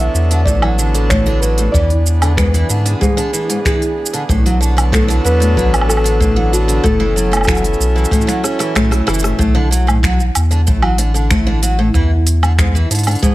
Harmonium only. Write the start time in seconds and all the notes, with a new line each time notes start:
Already playing: F#3 B3 D4 E4 A4
1.74 E3
2.89 G#4
4.30 F#3
5.00 A4
7.05 C#4
7.57 E4